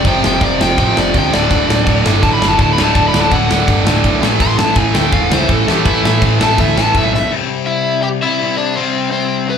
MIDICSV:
0, 0, Header, 1, 6, 480
1, 0, Start_track
1, 0, Tempo, 363196
1, 63, Time_signature, 4, 2, 24, 8
1, 12660, End_track
2, 0, Start_track
2, 0, Title_t, "Overdriven electric guitar"
2, 0, Program_c, 0, 29
2, 104, Note_on_c, 0, 79, 95
2, 317, Note_off_c, 0, 79, 0
2, 355, Note_on_c, 0, 79, 88
2, 563, Note_off_c, 0, 79, 0
2, 574, Note_on_c, 0, 74, 79
2, 792, Note_off_c, 0, 74, 0
2, 817, Note_on_c, 0, 79, 101
2, 1033, Note_off_c, 0, 79, 0
2, 1054, Note_on_c, 0, 79, 88
2, 1272, Note_off_c, 0, 79, 0
2, 1311, Note_on_c, 0, 74, 86
2, 1521, Note_off_c, 0, 74, 0
2, 1560, Note_on_c, 0, 79, 78
2, 1765, Note_off_c, 0, 79, 0
2, 1766, Note_on_c, 0, 74, 109
2, 2686, Note_off_c, 0, 74, 0
2, 2947, Note_on_c, 0, 81, 110
2, 3077, Note_off_c, 0, 81, 0
2, 3082, Note_on_c, 0, 83, 90
2, 3282, Note_off_c, 0, 83, 0
2, 3282, Note_on_c, 0, 81, 104
2, 3428, Note_off_c, 0, 81, 0
2, 3462, Note_on_c, 0, 81, 79
2, 3598, Note_off_c, 0, 81, 0
2, 3610, Note_on_c, 0, 83, 100
2, 3748, Note_off_c, 0, 83, 0
2, 3753, Note_on_c, 0, 81, 100
2, 3895, Note_off_c, 0, 81, 0
2, 3911, Note_on_c, 0, 81, 86
2, 4063, Note_off_c, 0, 81, 0
2, 4070, Note_on_c, 0, 83, 90
2, 4222, Note_off_c, 0, 83, 0
2, 4246, Note_on_c, 0, 81, 80
2, 4382, Note_on_c, 0, 78, 88
2, 4390, Note_off_c, 0, 81, 0
2, 5314, Note_off_c, 0, 78, 0
2, 5837, Note_on_c, 0, 84, 112
2, 6057, Note_off_c, 0, 84, 0
2, 6062, Note_on_c, 0, 81, 90
2, 6295, Note_off_c, 0, 81, 0
2, 6295, Note_on_c, 0, 80, 91
2, 6546, Note_off_c, 0, 80, 0
2, 6546, Note_on_c, 0, 79, 100
2, 6777, Note_off_c, 0, 79, 0
2, 6782, Note_on_c, 0, 77, 87
2, 7015, Note_off_c, 0, 77, 0
2, 7049, Note_on_c, 0, 72, 95
2, 7269, Note_off_c, 0, 72, 0
2, 7299, Note_on_c, 0, 69, 92
2, 7545, Note_off_c, 0, 69, 0
2, 7545, Note_on_c, 0, 67, 109
2, 7744, Note_on_c, 0, 64, 98
2, 7757, Note_off_c, 0, 67, 0
2, 8208, Note_off_c, 0, 64, 0
2, 8494, Note_on_c, 0, 81, 106
2, 8711, Note_off_c, 0, 81, 0
2, 8718, Note_on_c, 0, 76, 97
2, 8942, Note_off_c, 0, 76, 0
2, 8951, Note_on_c, 0, 81, 106
2, 9179, Note_off_c, 0, 81, 0
2, 9217, Note_on_c, 0, 76, 101
2, 9423, Note_off_c, 0, 76, 0
2, 9439, Note_on_c, 0, 76, 108
2, 9663, Note_off_c, 0, 76, 0
2, 10123, Note_on_c, 0, 76, 84
2, 10135, Note_on_c, 0, 64, 62
2, 10581, Note_off_c, 0, 64, 0
2, 10606, Note_on_c, 0, 79, 115
2, 10618, Note_on_c, 0, 67, 97
2, 10627, Note_off_c, 0, 76, 0
2, 10673, Note_off_c, 0, 79, 0
2, 10684, Note_off_c, 0, 67, 0
2, 10866, Note_on_c, 0, 76, 111
2, 10871, Note_on_c, 0, 64, 86
2, 11311, Note_off_c, 0, 64, 0
2, 11327, Note_off_c, 0, 76, 0
2, 11332, Note_on_c, 0, 74, 104
2, 11339, Note_on_c, 0, 62, 78
2, 11559, Note_off_c, 0, 74, 0
2, 11563, Note_off_c, 0, 62, 0
2, 11571, Note_on_c, 0, 72, 88
2, 11585, Note_on_c, 0, 60, 67
2, 12029, Note_off_c, 0, 60, 0
2, 12043, Note_off_c, 0, 72, 0
2, 12043, Note_on_c, 0, 60, 66
2, 12059, Note_on_c, 0, 72, 87
2, 12498, Note_off_c, 0, 60, 0
2, 12545, Note_on_c, 0, 59, 75
2, 12551, Note_off_c, 0, 72, 0
2, 12556, Note_on_c, 0, 71, 97
2, 12660, Note_off_c, 0, 59, 0
2, 12660, Note_off_c, 0, 71, 0
2, 12660, End_track
3, 0, Start_track
3, 0, Title_t, "Overdriven electric guitar"
3, 0, Program_c, 1, 29
3, 821, Note_on_c, 1, 48, 71
3, 836, Note_on_c, 1, 41, 68
3, 1486, Note_off_c, 1, 41, 0
3, 1508, Note_off_c, 1, 48, 0
3, 1523, Note_on_c, 1, 48, 73
3, 1547, Note_on_c, 1, 53, 74
3, 1739, Note_off_c, 1, 48, 0
3, 1751, Note_off_c, 1, 53, 0
3, 1793, Note_on_c, 1, 50, 94
3, 2499, Note_off_c, 1, 50, 0
3, 3236, Note_on_c, 1, 38, 65
3, 3642, Note_off_c, 1, 38, 0
3, 5157, Note_on_c, 1, 38, 74
3, 5564, Note_off_c, 1, 38, 0
3, 9672, Note_on_c, 1, 48, 106
3, 9691, Note_on_c, 1, 55, 104
3, 9719, Note_on_c, 1, 60, 107
3, 10851, Note_off_c, 1, 48, 0
3, 10852, Note_off_c, 1, 60, 0
3, 10857, Note_on_c, 1, 60, 74
3, 10861, Note_off_c, 1, 55, 0
3, 10882, Note_on_c, 1, 55, 80
3, 10898, Note_on_c, 1, 48, 65
3, 11075, Note_off_c, 1, 48, 0
3, 11091, Note_on_c, 1, 48, 77
3, 11096, Note_off_c, 1, 55, 0
3, 11116, Note_on_c, 1, 55, 81
3, 11129, Note_off_c, 1, 60, 0
3, 11134, Note_on_c, 1, 60, 79
3, 11561, Note_off_c, 1, 48, 0
3, 11574, Note_off_c, 1, 55, 0
3, 11584, Note_on_c, 1, 48, 104
3, 11595, Note_on_c, 1, 55, 114
3, 11616, Note_off_c, 1, 60, 0
3, 11622, Note_on_c, 1, 60, 117
3, 12660, Note_off_c, 1, 48, 0
3, 12660, Note_off_c, 1, 55, 0
3, 12660, Note_off_c, 1, 60, 0
3, 12660, End_track
4, 0, Start_track
4, 0, Title_t, "Distorted electric guitar"
4, 0, Program_c, 2, 30
4, 60, Note_on_c, 2, 41, 89
4, 64, Note_on_c, 2, 48, 106
4, 66, Note_on_c, 2, 53, 103
4, 279, Note_off_c, 2, 41, 0
4, 284, Note_off_c, 2, 48, 0
4, 292, Note_off_c, 2, 53, 0
4, 295, Note_on_c, 2, 41, 74
4, 300, Note_on_c, 2, 48, 96
4, 308, Note_on_c, 2, 53, 80
4, 490, Note_off_c, 2, 48, 0
4, 494, Note_off_c, 2, 41, 0
4, 504, Note_off_c, 2, 53, 0
4, 506, Note_on_c, 2, 48, 83
4, 510, Note_on_c, 2, 41, 77
4, 520, Note_on_c, 2, 53, 93
4, 736, Note_off_c, 2, 41, 0
4, 748, Note_off_c, 2, 48, 0
4, 752, Note_on_c, 2, 41, 76
4, 753, Note_off_c, 2, 53, 0
4, 764, Note_on_c, 2, 48, 87
4, 768, Note_on_c, 2, 53, 90
4, 977, Note_off_c, 2, 41, 0
4, 993, Note_on_c, 2, 41, 102
4, 996, Note_off_c, 2, 48, 0
4, 999, Note_off_c, 2, 53, 0
4, 1012, Note_on_c, 2, 48, 104
4, 1014, Note_on_c, 2, 53, 114
4, 1233, Note_off_c, 2, 41, 0
4, 1243, Note_off_c, 2, 48, 0
4, 1248, Note_off_c, 2, 53, 0
4, 1249, Note_on_c, 2, 41, 81
4, 1259, Note_on_c, 2, 48, 73
4, 1264, Note_on_c, 2, 53, 88
4, 1454, Note_off_c, 2, 48, 0
4, 1457, Note_off_c, 2, 41, 0
4, 1465, Note_off_c, 2, 53, 0
4, 1470, Note_on_c, 2, 48, 101
4, 1473, Note_on_c, 2, 41, 86
4, 1481, Note_on_c, 2, 53, 102
4, 1712, Note_off_c, 2, 48, 0
4, 1714, Note_off_c, 2, 41, 0
4, 1718, Note_off_c, 2, 53, 0
4, 1720, Note_on_c, 2, 38, 97
4, 1730, Note_on_c, 2, 45, 89
4, 1740, Note_on_c, 2, 50, 110
4, 1955, Note_off_c, 2, 45, 0
4, 1970, Note_off_c, 2, 38, 0
4, 1971, Note_on_c, 2, 45, 107
4, 1975, Note_off_c, 2, 50, 0
4, 1975, Note_on_c, 2, 38, 94
4, 1980, Note_on_c, 2, 50, 102
4, 2200, Note_off_c, 2, 38, 0
4, 2200, Note_off_c, 2, 45, 0
4, 2206, Note_on_c, 2, 38, 81
4, 2210, Note_off_c, 2, 50, 0
4, 2215, Note_on_c, 2, 50, 95
4, 2216, Note_on_c, 2, 45, 85
4, 2425, Note_off_c, 2, 45, 0
4, 2441, Note_on_c, 2, 45, 90
4, 2442, Note_off_c, 2, 38, 0
4, 2447, Note_on_c, 2, 38, 83
4, 2452, Note_off_c, 2, 50, 0
4, 2457, Note_on_c, 2, 50, 90
4, 2670, Note_off_c, 2, 38, 0
4, 2673, Note_off_c, 2, 45, 0
4, 2677, Note_off_c, 2, 50, 0
4, 2685, Note_on_c, 2, 38, 83
4, 2688, Note_on_c, 2, 45, 82
4, 2693, Note_on_c, 2, 50, 99
4, 2894, Note_off_c, 2, 38, 0
4, 2910, Note_on_c, 2, 38, 99
4, 2915, Note_off_c, 2, 45, 0
4, 2916, Note_off_c, 2, 50, 0
4, 2931, Note_on_c, 2, 45, 93
4, 2932, Note_on_c, 2, 50, 100
4, 3156, Note_off_c, 2, 38, 0
4, 3170, Note_off_c, 2, 45, 0
4, 3172, Note_on_c, 2, 38, 84
4, 3177, Note_off_c, 2, 50, 0
4, 3186, Note_on_c, 2, 45, 83
4, 3193, Note_on_c, 2, 50, 88
4, 3402, Note_off_c, 2, 38, 0
4, 3413, Note_off_c, 2, 45, 0
4, 3418, Note_on_c, 2, 38, 91
4, 3420, Note_off_c, 2, 50, 0
4, 3429, Note_on_c, 2, 45, 87
4, 3436, Note_on_c, 2, 50, 97
4, 3659, Note_off_c, 2, 38, 0
4, 3666, Note_off_c, 2, 45, 0
4, 3673, Note_off_c, 2, 50, 0
4, 3675, Note_on_c, 2, 38, 88
4, 3682, Note_on_c, 2, 45, 90
4, 3689, Note_on_c, 2, 50, 105
4, 3880, Note_off_c, 2, 38, 0
4, 3890, Note_off_c, 2, 50, 0
4, 3891, Note_off_c, 2, 45, 0
4, 3896, Note_on_c, 2, 38, 91
4, 3906, Note_on_c, 2, 50, 108
4, 3907, Note_on_c, 2, 45, 100
4, 4129, Note_off_c, 2, 38, 0
4, 4138, Note_off_c, 2, 45, 0
4, 4144, Note_off_c, 2, 50, 0
4, 4145, Note_on_c, 2, 38, 85
4, 4154, Note_on_c, 2, 45, 97
4, 4160, Note_on_c, 2, 50, 80
4, 4399, Note_off_c, 2, 38, 0
4, 4413, Note_off_c, 2, 45, 0
4, 4415, Note_on_c, 2, 38, 83
4, 4416, Note_off_c, 2, 50, 0
4, 4429, Note_on_c, 2, 45, 91
4, 4430, Note_on_c, 2, 50, 89
4, 4596, Note_off_c, 2, 38, 0
4, 4605, Note_off_c, 2, 45, 0
4, 4612, Note_on_c, 2, 38, 83
4, 4615, Note_off_c, 2, 50, 0
4, 4621, Note_on_c, 2, 45, 90
4, 4630, Note_on_c, 2, 50, 97
4, 4864, Note_off_c, 2, 38, 0
4, 4876, Note_off_c, 2, 50, 0
4, 4879, Note_off_c, 2, 45, 0
4, 4880, Note_on_c, 2, 38, 96
4, 4892, Note_on_c, 2, 50, 102
4, 4895, Note_on_c, 2, 45, 107
4, 5078, Note_off_c, 2, 38, 0
4, 5084, Note_off_c, 2, 45, 0
4, 5094, Note_on_c, 2, 38, 74
4, 5096, Note_off_c, 2, 50, 0
4, 5100, Note_on_c, 2, 45, 82
4, 5112, Note_on_c, 2, 50, 87
4, 5328, Note_off_c, 2, 38, 0
4, 5340, Note_off_c, 2, 45, 0
4, 5344, Note_on_c, 2, 38, 89
4, 5349, Note_off_c, 2, 50, 0
4, 5356, Note_on_c, 2, 45, 93
4, 5365, Note_on_c, 2, 50, 90
4, 5544, Note_off_c, 2, 45, 0
4, 5554, Note_off_c, 2, 38, 0
4, 5560, Note_on_c, 2, 45, 96
4, 5564, Note_on_c, 2, 52, 105
4, 5572, Note_off_c, 2, 50, 0
4, 5577, Note_on_c, 2, 57, 103
4, 5807, Note_off_c, 2, 45, 0
4, 5813, Note_on_c, 2, 45, 101
4, 5819, Note_off_c, 2, 52, 0
4, 5825, Note_on_c, 2, 52, 108
4, 5827, Note_off_c, 2, 57, 0
4, 5832, Note_on_c, 2, 57, 101
4, 6039, Note_off_c, 2, 52, 0
4, 6041, Note_off_c, 2, 45, 0
4, 6045, Note_on_c, 2, 52, 86
4, 6046, Note_on_c, 2, 45, 85
4, 6060, Note_off_c, 2, 57, 0
4, 6066, Note_on_c, 2, 57, 101
4, 6293, Note_off_c, 2, 52, 0
4, 6297, Note_off_c, 2, 45, 0
4, 6298, Note_on_c, 2, 52, 91
4, 6302, Note_off_c, 2, 57, 0
4, 6303, Note_on_c, 2, 45, 89
4, 6307, Note_on_c, 2, 57, 110
4, 6527, Note_off_c, 2, 45, 0
4, 6532, Note_on_c, 2, 45, 84
4, 6534, Note_off_c, 2, 52, 0
4, 6539, Note_on_c, 2, 52, 86
4, 6541, Note_off_c, 2, 57, 0
4, 6547, Note_on_c, 2, 57, 101
4, 6733, Note_off_c, 2, 45, 0
4, 6747, Note_off_c, 2, 52, 0
4, 6749, Note_on_c, 2, 45, 100
4, 6752, Note_on_c, 2, 52, 100
4, 6760, Note_off_c, 2, 57, 0
4, 6776, Note_on_c, 2, 57, 127
4, 7003, Note_off_c, 2, 45, 0
4, 7017, Note_off_c, 2, 57, 0
4, 7018, Note_on_c, 2, 45, 95
4, 7020, Note_off_c, 2, 52, 0
4, 7025, Note_on_c, 2, 52, 81
4, 7033, Note_on_c, 2, 57, 91
4, 7234, Note_off_c, 2, 45, 0
4, 7248, Note_off_c, 2, 57, 0
4, 7250, Note_on_c, 2, 45, 83
4, 7256, Note_off_c, 2, 52, 0
4, 7262, Note_on_c, 2, 52, 96
4, 7263, Note_on_c, 2, 57, 93
4, 7465, Note_off_c, 2, 45, 0
4, 7477, Note_off_c, 2, 57, 0
4, 7480, Note_on_c, 2, 45, 92
4, 7484, Note_off_c, 2, 52, 0
4, 7489, Note_on_c, 2, 52, 99
4, 7493, Note_on_c, 2, 57, 110
4, 7714, Note_off_c, 2, 45, 0
4, 7718, Note_off_c, 2, 52, 0
4, 7722, Note_off_c, 2, 57, 0
4, 7730, Note_on_c, 2, 45, 110
4, 7734, Note_on_c, 2, 52, 111
4, 7738, Note_on_c, 2, 57, 115
4, 7948, Note_off_c, 2, 45, 0
4, 7956, Note_off_c, 2, 52, 0
4, 7964, Note_on_c, 2, 45, 77
4, 7969, Note_off_c, 2, 57, 0
4, 7972, Note_on_c, 2, 52, 93
4, 7985, Note_on_c, 2, 57, 84
4, 8191, Note_off_c, 2, 45, 0
4, 8200, Note_off_c, 2, 52, 0
4, 8203, Note_off_c, 2, 57, 0
4, 8207, Note_on_c, 2, 45, 98
4, 8216, Note_on_c, 2, 52, 91
4, 8218, Note_on_c, 2, 57, 92
4, 8447, Note_off_c, 2, 52, 0
4, 8449, Note_off_c, 2, 45, 0
4, 8451, Note_off_c, 2, 57, 0
4, 8463, Note_on_c, 2, 52, 82
4, 8465, Note_on_c, 2, 45, 87
4, 8467, Note_on_c, 2, 57, 98
4, 8695, Note_off_c, 2, 45, 0
4, 8704, Note_off_c, 2, 52, 0
4, 8707, Note_off_c, 2, 57, 0
4, 8710, Note_on_c, 2, 45, 112
4, 8720, Note_on_c, 2, 52, 104
4, 8723, Note_on_c, 2, 57, 102
4, 8950, Note_off_c, 2, 45, 0
4, 8953, Note_off_c, 2, 57, 0
4, 8960, Note_off_c, 2, 52, 0
4, 8966, Note_on_c, 2, 45, 78
4, 8969, Note_on_c, 2, 57, 96
4, 8976, Note_on_c, 2, 52, 76
4, 9168, Note_off_c, 2, 45, 0
4, 9176, Note_off_c, 2, 52, 0
4, 9181, Note_off_c, 2, 57, 0
4, 9183, Note_on_c, 2, 45, 80
4, 9192, Note_on_c, 2, 52, 94
4, 9197, Note_on_c, 2, 57, 96
4, 9416, Note_off_c, 2, 45, 0
4, 9420, Note_off_c, 2, 52, 0
4, 9432, Note_off_c, 2, 57, 0
4, 9432, Note_on_c, 2, 45, 90
4, 9436, Note_on_c, 2, 52, 100
4, 9447, Note_on_c, 2, 57, 100
4, 9652, Note_off_c, 2, 45, 0
4, 9654, Note_off_c, 2, 52, 0
4, 9660, Note_off_c, 2, 57, 0
4, 12660, End_track
5, 0, Start_track
5, 0, Title_t, "Picked electric bass"
5, 0, Program_c, 3, 34
5, 71, Note_on_c, 3, 29, 90
5, 263, Note_off_c, 3, 29, 0
5, 337, Note_on_c, 3, 29, 93
5, 518, Note_off_c, 3, 29, 0
5, 545, Note_on_c, 3, 29, 84
5, 739, Note_off_c, 3, 29, 0
5, 815, Note_on_c, 3, 29, 90
5, 997, Note_off_c, 3, 29, 0
5, 1037, Note_on_c, 3, 33, 92
5, 1226, Note_off_c, 3, 33, 0
5, 1283, Note_on_c, 3, 29, 84
5, 1470, Note_off_c, 3, 29, 0
5, 1512, Note_on_c, 3, 38, 86
5, 1703, Note_off_c, 3, 38, 0
5, 1780, Note_on_c, 3, 26, 80
5, 1960, Note_off_c, 3, 26, 0
5, 2000, Note_on_c, 3, 26, 83
5, 2188, Note_off_c, 3, 26, 0
5, 2233, Note_on_c, 3, 26, 86
5, 2424, Note_off_c, 3, 26, 0
5, 2470, Note_on_c, 3, 26, 90
5, 2662, Note_off_c, 3, 26, 0
5, 2703, Note_on_c, 3, 31, 88
5, 2898, Note_off_c, 3, 31, 0
5, 2942, Note_on_c, 3, 33, 90
5, 3137, Note_off_c, 3, 33, 0
5, 3181, Note_on_c, 3, 30, 93
5, 3377, Note_off_c, 3, 30, 0
5, 3425, Note_on_c, 3, 26, 88
5, 3619, Note_off_c, 3, 26, 0
5, 3655, Note_on_c, 3, 26, 93
5, 3853, Note_off_c, 3, 26, 0
5, 3905, Note_on_c, 3, 26, 86
5, 4099, Note_off_c, 3, 26, 0
5, 4129, Note_on_c, 3, 26, 94
5, 4330, Note_off_c, 3, 26, 0
5, 4382, Note_on_c, 3, 26, 85
5, 4577, Note_off_c, 3, 26, 0
5, 4626, Note_on_c, 3, 26, 95
5, 4820, Note_off_c, 3, 26, 0
5, 4861, Note_on_c, 3, 31, 88
5, 5057, Note_off_c, 3, 31, 0
5, 5106, Note_on_c, 3, 26, 93
5, 5300, Note_off_c, 3, 26, 0
5, 5347, Note_on_c, 3, 35, 90
5, 5540, Note_off_c, 3, 35, 0
5, 5580, Note_on_c, 3, 33, 97
5, 5776, Note_off_c, 3, 33, 0
5, 5826, Note_on_c, 3, 33, 91
5, 6019, Note_off_c, 3, 33, 0
5, 6061, Note_on_c, 3, 33, 95
5, 6256, Note_off_c, 3, 33, 0
5, 6290, Note_on_c, 3, 33, 101
5, 6490, Note_off_c, 3, 33, 0
5, 6537, Note_on_c, 3, 38, 92
5, 6734, Note_off_c, 3, 38, 0
5, 6779, Note_on_c, 3, 28, 93
5, 6975, Note_off_c, 3, 28, 0
5, 7010, Note_on_c, 3, 37, 95
5, 7210, Note_off_c, 3, 37, 0
5, 7261, Note_on_c, 3, 33, 81
5, 7456, Note_off_c, 3, 33, 0
5, 7494, Note_on_c, 3, 33, 98
5, 7692, Note_off_c, 3, 33, 0
5, 7745, Note_on_c, 3, 33, 102
5, 7938, Note_off_c, 3, 33, 0
5, 7977, Note_on_c, 3, 33, 100
5, 8174, Note_off_c, 3, 33, 0
5, 8228, Note_on_c, 3, 33, 93
5, 8420, Note_off_c, 3, 33, 0
5, 8475, Note_on_c, 3, 33, 94
5, 8664, Note_off_c, 3, 33, 0
5, 8705, Note_on_c, 3, 38, 90
5, 8898, Note_off_c, 3, 38, 0
5, 8935, Note_on_c, 3, 33, 95
5, 9132, Note_off_c, 3, 33, 0
5, 9182, Note_on_c, 3, 35, 91
5, 9571, Note_off_c, 3, 35, 0
5, 12660, End_track
6, 0, Start_track
6, 0, Title_t, "Drums"
6, 64, Note_on_c, 9, 36, 125
6, 69, Note_on_c, 9, 49, 64
6, 197, Note_off_c, 9, 36, 0
6, 201, Note_off_c, 9, 49, 0
6, 318, Note_on_c, 9, 38, 112
6, 451, Note_off_c, 9, 38, 0
6, 544, Note_on_c, 9, 36, 111
6, 544, Note_on_c, 9, 49, 55
6, 676, Note_off_c, 9, 36, 0
6, 676, Note_off_c, 9, 49, 0
6, 806, Note_on_c, 9, 38, 107
6, 938, Note_off_c, 9, 38, 0
6, 1031, Note_on_c, 9, 36, 115
6, 1031, Note_on_c, 9, 49, 61
6, 1163, Note_off_c, 9, 36, 0
6, 1163, Note_off_c, 9, 49, 0
6, 1283, Note_on_c, 9, 38, 107
6, 1415, Note_off_c, 9, 38, 0
6, 1511, Note_on_c, 9, 36, 108
6, 1512, Note_on_c, 9, 49, 62
6, 1643, Note_off_c, 9, 36, 0
6, 1644, Note_off_c, 9, 49, 0
6, 1766, Note_on_c, 9, 38, 109
6, 1898, Note_off_c, 9, 38, 0
6, 1992, Note_on_c, 9, 36, 113
6, 1998, Note_on_c, 9, 49, 61
6, 2124, Note_off_c, 9, 36, 0
6, 2130, Note_off_c, 9, 49, 0
6, 2251, Note_on_c, 9, 38, 111
6, 2383, Note_off_c, 9, 38, 0
6, 2467, Note_on_c, 9, 49, 64
6, 2468, Note_on_c, 9, 36, 109
6, 2599, Note_off_c, 9, 49, 0
6, 2600, Note_off_c, 9, 36, 0
6, 2719, Note_on_c, 9, 38, 114
6, 2852, Note_off_c, 9, 38, 0
6, 2946, Note_on_c, 9, 36, 103
6, 2950, Note_on_c, 9, 49, 64
6, 3078, Note_off_c, 9, 36, 0
6, 3082, Note_off_c, 9, 49, 0
6, 3199, Note_on_c, 9, 38, 103
6, 3331, Note_off_c, 9, 38, 0
6, 3422, Note_on_c, 9, 36, 109
6, 3423, Note_on_c, 9, 49, 57
6, 3554, Note_off_c, 9, 36, 0
6, 3555, Note_off_c, 9, 49, 0
6, 3679, Note_on_c, 9, 38, 111
6, 3811, Note_off_c, 9, 38, 0
6, 3901, Note_on_c, 9, 36, 121
6, 3909, Note_on_c, 9, 49, 63
6, 4034, Note_off_c, 9, 36, 0
6, 4042, Note_off_c, 9, 49, 0
6, 4151, Note_on_c, 9, 38, 118
6, 4283, Note_off_c, 9, 38, 0
6, 4381, Note_on_c, 9, 36, 108
6, 4381, Note_on_c, 9, 49, 63
6, 4513, Note_off_c, 9, 36, 0
6, 4513, Note_off_c, 9, 49, 0
6, 4635, Note_on_c, 9, 38, 107
6, 4768, Note_off_c, 9, 38, 0
6, 4862, Note_on_c, 9, 36, 109
6, 4862, Note_on_c, 9, 49, 65
6, 4994, Note_off_c, 9, 49, 0
6, 4995, Note_off_c, 9, 36, 0
6, 5111, Note_on_c, 9, 38, 119
6, 5243, Note_off_c, 9, 38, 0
6, 5342, Note_on_c, 9, 36, 104
6, 5348, Note_on_c, 9, 49, 59
6, 5474, Note_off_c, 9, 36, 0
6, 5480, Note_off_c, 9, 49, 0
6, 5592, Note_on_c, 9, 38, 103
6, 5724, Note_off_c, 9, 38, 0
6, 5817, Note_on_c, 9, 36, 121
6, 5818, Note_on_c, 9, 49, 72
6, 5949, Note_off_c, 9, 36, 0
6, 5950, Note_off_c, 9, 49, 0
6, 6063, Note_on_c, 9, 38, 117
6, 6195, Note_off_c, 9, 38, 0
6, 6282, Note_on_c, 9, 49, 67
6, 6292, Note_on_c, 9, 36, 115
6, 6414, Note_off_c, 9, 49, 0
6, 6424, Note_off_c, 9, 36, 0
6, 6540, Note_on_c, 9, 38, 116
6, 6672, Note_off_c, 9, 38, 0
6, 6771, Note_on_c, 9, 49, 64
6, 6774, Note_on_c, 9, 36, 125
6, 6903, Note_off_c, 9, 49, 0
6, 6906, Note_off_c, 9, 36, 0
6, 7026, Note_on_c, 9, 38, 118
6, 7158, Note_off_c, 9, 38, 0
6, 7252, Note_on_c, 9, 49, 60
6, 7256, Note_on_c, 9, 36, 107
6, 7385, Note_off_c, 9, 49, 0
6, 7388, Note_off_c, 9, 36, 0
6, 7512, Note_on_c, 9, 38, 100
6, 7644, Note_off_c, 9, 38, 0
6, 7739, Note_on_c, 9, 36, 124
6, 7742, Note_on_c, 9, 49, 68
6, 7871, Note_off_c, 9, 36, 0
6, 7874, Note_off_c, 9, 49, 0
6, 8001, Note_on_c, 9, 38, 120
6, 8133, Note_off_c, 9, 38, 0
6, 8219, Note_on_c, 9, 36, 102
6, 8222, Note_on_c, 9, 49, 59
6, 8351, Note_off_c, 9, 36, 0
6, 8354, Note_off_c, 9, 49, 0
6, 8470, Note_on_c, 9, 38, 114
6, 8602, Note_off_c, 9, 38, 0
6, 8698, Note_on_c, 9, 49, 66
6, 8700, Note_on_c, 9, 36, 114
6, 8830, Note_off_c, 9, 49, 0
6, 8832, Note_off_c, 9, 36, 0
6, 8954, Note_on_c, 9, 38, 107
6, 9086, Note_off_c, 9, 38, 0
6, 9181, Note_on_c, 9, 36, 116
6, 9182, Note_on_c, 9, 49, 56
6, 9313, Note_off_c, 9, 36, 0
6, 9315, Note_off_c, 9, 49, 0
6, 9445, Note_on_c, 9, 38, 59
6, 9577, Note_off_c, 9, 38, 0
6, 12660, End_track
0, 0, End_of_file